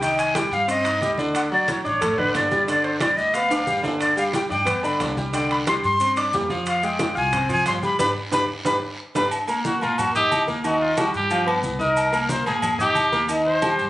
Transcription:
Already playing: C2
0.01 D#3 D#4 D#5 G5, high conga, high timbale, long guiro, maracas
0.18 G#5, high conga, high timbale, maracas
0.34 G3 G4 G5, high conga, high timbale, short guiro, maracas
0.51 G2 F5, short guiro, maracas
0.68 C4 C5 D#5 C6, high conga, high timbale, long guiro, maracas
0.85 D#4 D#5 D#6, high conga, high timbale, maracas
1.01 D2 G3 G4 G5, high conga, short guiro, maracas
1.18 D3 D4 D5, high conga, short guiro, maracas
1.35 F#5, high conga, high timbale, long guiro, maracas
1.52 F#3 F#4 D5 F#5, high conga
1.68 C#5, high conga, high timbale, short guiro, maracas
1.84 A1 D4 C#5 D5 D6, high conga, short guiro, maracas
2.01 A3 A4 A5, high conga, low conga, high timbale, long guiro, maracas
2.18 D3 D4 B4 D5, high conga, low conga
2.35 G1 D5, high conga, high timbale, low timbale, short guiro, maracas
2.51 G3 G4 G5, high conga, short guiro, maracas
2.67 D3 D4 D5, high conga, high timbale, long guiro, maracas
2.84 C5, high conga, high timbale
3.00 G3 G4 D5 G5, high conga, high timbale, short guiro, maracas
3.17 D2 D#5, short guiro, maracas
3.33 B3 B4 F5 B5, high conga, high timbale, long guiro, maracas
3.51 D4 D5 D6, high conga, high timbale, maracas
3.67 G1 G3 G4 G5, high conga, short guiro, maracas
3.82 D3 D4 D5, high conga, low timbale, short guiro, maracas
4.00 D5, high conga, high timbale, long guiro, maracas
4.16 G3 G4 F5 G5, high conga, maracas
4.33 G5, high conga, high timbale, short guiro, maracas
4.49 G2 D4 D5 G5 D6, high conga, short guiro, maracas
4.65 B3 B4 B5, high conga, low conga, high timbale, long guiro, maracas
4.83 D3 D4 D5 B5, high conga, maracas
5.00 C2, high conga, high timbale, low timbale, short guiro, maracas
5.17 G3 G4 G5, high conga, short guiro, maracas
5.33 D3 D4 D5 G5, high timbale, long guiro, maracas
5.50 B5, high conga, high timbale
5.67 G3 G4 G5 C6, high conga, high timbale, short guiro, maracas
5.84 G2 C6, short guiro, maracas
6.00 C4 C5 C6, high conga, high timbale, long guiro, maracas
6.16 D4 D5 D6, high conga, high timbale, maracas
6.33 F2 G3 G4 G5, high conga, low timbale, short guiro, maracas
6.50 F3 F4 F5, high conga, short guiro, maracas
6.66 F5, high conga, high timbale, long guiro, maracas
6.83 G#3 G#4 F5 G5, high conga, maracas
6.99 high conga, high timbale, short guiro, maracas
7.15 C2 F4 F5 G#5 F6, high conga, short guiro, maracas
7.33 C4 C5 C6, high conga, low conga, high timbale, long guiro, maracas
7.49 F3 F4 F5 G#5, high conga, low conga, maracas
7.65 G1 C6, high conga, high timbale, low timbale, short guiro, maracas
7.83 G3 G4 G5 B5, high conga, short guiro, maracas
7.99 G1 D4 G4 B4 B5, high conga, high timbale, long guiro, maracas
8.32 G1 D4 G4 B4 B5, high conga, high timbale, maracas
8.65 G1 D4 G4 B4 B5, high conga, high timbale, long guiro, maracas
9.15 G1 D4 G4 B4 B5, high conga, high timbale, long guiro, maracas
9.31 high conga, low agogo, long guiro, maracas
9.47 A#3 A#4 A#5, high conga, low agogo, maracas
9.65 F#4, high conga, short guiro, maracas
9.81 A#1 A#3 F4 A#4 A#5, high conga, low agogo, short guiro, maracas
9.98 F#4, high conga, low conga, low agogo, long guiro, maracas
10.15 D#4 G4 D#5 D#6, high conga, low conga, maracas
10.31 D#2, high conga, low agogo, short guiro, maracas
10.47 A#3 A#4 A#5, high conga, short guiro, maracas
10.64 D#3 D#4 F#4 D#5, high conga, low agogo, long guiro, maracas
10.81 F4, high conga
10.97 G3 F#4 G4 G5, high conga, low agogo, short guiro, maracas
11.14 G2 G4, short guiro, maracas
11.30 F3 F4 F5, high conga, low agogo, long guiro, maracas
11.46 B3 B4 B5, high conga, low agogo
11.63 C2, high conga, short guiro, maracas
11.79 D#4 A#4 D#5 D#6, high conga, short guiro, maracas
11.96 high conga, low agogo, long guiro, maracas
12.12 A#3 A#4 A#5, high conga, low agogo, maracas
12.29 C5, high conga, short guiro, maracas
12.46 A#1 A#3 G#4 A#4 A#5, high conga, low agogo, short guiro, maracas
12.62 high conga, low conga, low agogo, long guiro, maracas
12.79 D#4 G4 D#5 D#6, high conga, low conga, maracas
12.95 D#2, high conga, low agogo, short guiro, maracas
13.12 A#3 A#4 A#5, high conga, short guiro, maracas
13.29 D#3 D#4 D#5, low agogo, long guiro, maracas
13.46 C5, high conga
13.62 G3 G4 G5, high conga, low agogo, short guiro, maracas
13.79 G2, short guiro, maracas

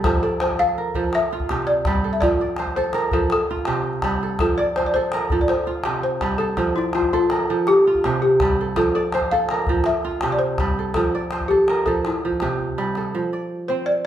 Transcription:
Already playing: F4 G4 A4
0.04 F3 A4, calabash thump, calabash click
0.23 A4 D5
0.40 C5, calabash click
0.50 calabash thump
0.59 A4 F5
0.69 calabash click
0.78 A#4
0.95 F3 A4, calabash thump
1.04 calabash click
1.13 E5, calabash click
1.31 F4, calabash click
1.40 calabash thump
1.49 C3 G4, calabash click
1.67 D5
1.85 G3, calabash thump, calabash click
2.04 A4
2.13 E5
2.21 F3 D5, calabash thump, calabash click
2.31 calabash click
2.41 D5
2.56 C5, calabash click
2.67 calabash thump
2.76 A4 C5, calabash click
2.84 calabash click
2.93 A#4, calabash click
3.12 F3 A4, calabash thump
3.30 A4, calabash click
3.39 calabash click
3.51 F4
3.57 calabash thump
3.65 C3 G4, calabash click
3.84 calabash click
3.93 calabash click
4.02 G3, calabash thump, calabash click
4.11 calabash click
4.23 A4
4.39 F3 A4, calabash thump, calabash click
4.58 D5
4.76 C5, calabash click
4.84 D5, calabash thump
4.94 A4 C5
5.03 calabash click
5.12 A#4, calabash click
5.30 F3 A4, calabash thump
5.39 D5, calabash click
5.48 C5, calabash click
5.66 F4, calabash click
5.84 C3 G4, calabash click
6.03 C5
6.21 G3, calabash thump, calabash click
6.38 A4
6.57 F3, calabash thump, calabash click
6.76 E4 D5
6.93 F4 C5, calabash click
7.02 calabash thump
7.13 F4 A4
7.21 calabash click
7.30 A#4, calabash click
7.50 F3 A4
7.57 calabash click
7.67 G4, calabash click
7.86 F4, calabash click
7.95 calabash thump
8.04 C3 G4, calabash click
8.22 G4
8.40 G3, calabash thump, calabash click
8.61 A4
8.76 F3 A4, calabash thump, calabash click
8.95 A4 D5
9.12 C5, calabash click
9.21 calabash thump
9.31 A4 F5
9.40 calabash click
9.49 A#4, calabash click
9.67 F3 A4, calabash thump
9.75 calabash click
9.84 E5, calabash click
10.03 F4, calabash click
10.11 calabash thump
10.21 C3 G4, calabash click
10.32 D5
10.39 C5
10.58 G3, calabash thump, calabash click
10.79 A4
10.94 F3 A4, calabash thump, calabash click
11.15 D5
11.31 C5, calabash click
11.41 calabash thump
11.48 G4 A4
11.68 A#4, calabash click
11.86 F3 A4, calabash thump, calabash click
11.95 calabash click
12.05 E4, calabash click
12.25 F3
12.32 calabash thump
12.40 C3 G4, calabash click
12.60 calabash thump
12.78 G3, calabash click
12.95 A4, calabash click
13.15 F3
13.33 D5
13.68 C4 C5
13.86 D5

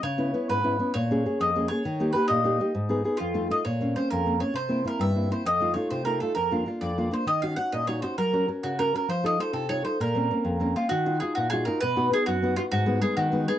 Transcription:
0.03 C#3 C#5
0.18 B3 C#4 E4
0.34 B3 C#4 E4
0.49 G#2 B4
0.64 B3 C#4 E4
0.79 B3 C#4 E4
0.94 A#2 C#5
1.11 A#3 C#4 G#4
1.26 A#3 C#4 G#4
1.40 F2 D#5
1.56 A#3 C#4 G#4
1.68 A#3 C#4 G#4 C#5
1.85 D#3
2.00 A#3 D#4 G4
2.13 A#3 D#4 G4 B4
2.28 A#2 D#5
2.44 A#3 D#4 G4
2.60 A#3 D#4 G4
2.75 G#2
2.89 B3 D#4 G#4
3.04 B3 D#4 G#4
3.17 F2 F4
3.34 A3 D#4 F4
3.50 A3 D#4 F4 D#5
3.65 A#2 C#5
3.81 A#3 C4 C#4
3.96 A#3 C4 C#4 C5
4.10 F2 A#4
4.26 A#3 C4 C#4
4.40 A#3 C4 C#4 C#5
4.54 C3 C5
4.69 A#3 C4 E4
4.84 A#3 C4 E4 A#4
4.99 G2 E5
5.15 A#3 C4 E4
5.30 A#3 C4 E4 C5
5.45 F2 D#5
5.60 A3 D#4 F4
5.74 A3 D#4 F4 C#5
5.91 C3 C5
6.05 A3 D#4 F4 A#4
6.20 A3 D#4 F4 A4
6.35 F2 A#4
6.51 A#3 D4 F4
6.66 A#3 D4 F4
6.81 F2 D5
6.98 A#3 D4 F4
7.11 A#3 D4 F4 C5
7.26 D#3 D#5
7.42 C#4 D#4 F#4 F5
7.56 C#4 D#4 F#4 F#5
7.72 A#2 D#5
7.87 C#4 D#4 F#4 C#5
8.02 C#4 D#4 F#4 C5
8.18 F#3 A#4
8.33 C#4 F#4 A#4
8.48 C#4 F#4 A#4
8.63 C#3 F#4
8.79 C#4 F#4 A#4
8.94 C#4 F#4 A#4
9.08 F3 C5
9.24 D#4 F4 A4 D#5
9.39 D#4 F4 A4 C5
9.53 C3 A4
9.69 D#4 F4 A4 C#5
9.84 D#4 F4 A4 C5
10.00 A#2 A#4
10.15 A#3 C4 C#4
10.30 A#3 C4 C#4
10.45 F2
10.60 A#3 C4 C#4 A#4
10.76 A#3 C4 C#4 F4 F5
10.89 D#3 F#4
11.06 D#4 F4 F#4
11.20 D#4 F4 F#4 G#4
11.35 A#2 F#4
11.50 D#4 F4 F#4 G#4
11.65 D#4 F4 F#4 A#4
11.80 B2 B4
11.96 B3 D#4 F#4
12.11 B3 D#4 F#4 G#4
12.26 F#2 F#4
12.42 B3 D#4 F#4
12.56 B3 D#4 F4 F#4
12.72 G#2 F#4
12.86 G#3 B3 D#4
13.01 G#3 B3 D#4 G#4
13.17 D#3 F#4
13.32 G#3 B3 D#4
13.48 G#3 B3 D#4 G#4

